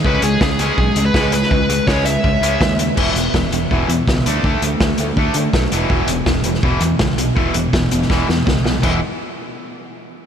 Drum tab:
CC |----------------|----------------|x---------------|----------------|
HH |--x---x---x---x-|--x---x---x---x-|--x---x---x---x-|--x---x---x---x-|
SD |----o-o-----o--o|----o-------o---|----o-------o---|----o-------o---|
BD |o---o---o---o---|o---o---o---o---|o---o---o---o---|o---o---o---o---|

CC |----------------|----------------|x---------------|
HH |--x---x---x---x-|--x---x---------|----------------|
SD |----o--o----o---|----o--oo-o-o-o-|----------------|
BD |o---o---o---o---|o---o---o---o---|o---------------|